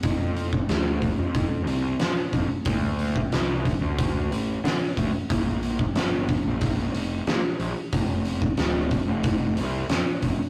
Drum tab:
HH |o-o-o-o-o-o-o-o-|o-o-o-o-o-o-o-o-|o-o-o-o-o-o-o-o-|o-o-o-o-o-o-o-o-|
SD |----o-------o---|----o-------o---|----o-------o---|----o-------o---|
BD |o--o--o-o-----o-|o--o--o-o-----o-|o--o--o-o-------|o--o--o-o-----o-|